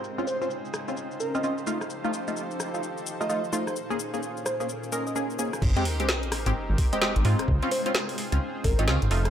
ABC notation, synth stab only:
X:1
M:4/4
L:1/16
Q:"Swing 16ths" 1/4=129
K:Dblyd
V:1 name="Synth stab"
z [CDF] z [CDF] z3 [CDF] z3 [CDF] [CDF] z [=A,EF] z | z [=A,EF] z [A,EF] z3 [A,EF] z3 [A,EF] [A,EF] z [A,EF] z | z [B,DA] z [B,DA] z3 [B,DA] z2 [B,DB] z [B,DA]2 [B,DA] z | z [A,CG] z [A,CG] z3 [A,CG] z3 [A,CG] [A,CG] z [A,CF] z |
z [CDF] z [CDF] z3 [CDF] z3 [CDF] [CDF] z [=A,EF] z |]